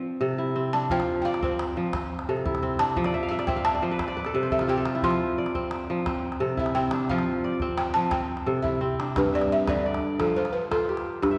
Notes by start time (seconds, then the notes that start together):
Already playing: C4 D4 F4 C5 D5
0.21 C3 A4
0.38 E4
0.56 C4
0.73 D4 A5
0.90 F3 F4 G5, calabash thump
1.00 calabash click
1.22 D5 F5 G5
1.34 calabash click
1.42 C4 C5, calabash thump
1.59 calabash click
1.77 F3, calabash click
1.93 C4, calabash thump, calabash click
2.03 calabash click
2.19 calabash click
2.29 C3 A4
2.37 calabash click
2.45 E4, calabash thump
2.55 calabash click
2.62 C4, calabash click
2.79 D4 A5, calabash click
2.96 F3, calabash thump
3.04 D5, calabash click
3.14 E5
3.23 F5
3.29 E5 F5
3.39 D5, calabash click
3.47 C4 E5 G5, calabash thump
3.56 F5
3.65 E5 A5, calabash click
3.75 D5
3.82 F3 C5
3.91 B4
3.99 C5, calabash thump, calabash click
4.08 D5, calabash click
4.17 B4
4.25 A4, calabash click
4.34 C3 B4
4.42 C5, calabash click
4.51 A4 E5, calabash thump
4.59 F4, calabash click
4.68 C4 G4 G5, calabash click
4.77 A4
4.86 F4, calabash click
4.95 E4
5.02 F3 F4 C6, calabash thump
5.11 calabash click
5.38 D5
5.46 calabash click
5.55 C4, calabash thump
5.71 calabash click
5.89 F3, calabash click
6.06 C4, calabash thump, calabash click
6.15 calabash click
6.32 calabash click
6.40 C3 A4
6.49 calabash click
6.57 E4 E5, calabash thump
6.66 calabash click
6.75 C4 G5, calabash click
6.91 D4, calabash click
7.09 F3 F4 F5, calabash thump
7.18 calabash click
7.44 D5, calabash click
7.60 C4, calabash thump
7.78 G5, calabash click
7.94 F3 A5
8.11 C4 G5, calabash thump, calabash click
8.37 calabash click
8.46 C3 A4, calabash click
8.62 E4 E5, calabash thump, calabash click
8.81 C4
9.00 D4, calabash click
9.16 G2 B4, calabash thump, calabash click
9.34 D5 E5
9.41 calabash click
9.52 E5
9.60 calabash click
9.68 D3 B4 D5, calabash thump, calabash click
9.77 calabash click
9.86 D5
9.94 calabash click
10.19 F3 A4, calabash thump, calabash click
10.36 F4 C5
10.45 calabash click
10.53 B4
10.63 calabash click
10.71 F4 A4 C5, calabash thump, calabash click
10.89 G4
10.97 calabash click
11.06 calabash click
11.22 G2, calabash thump, calabash click
11.31 E5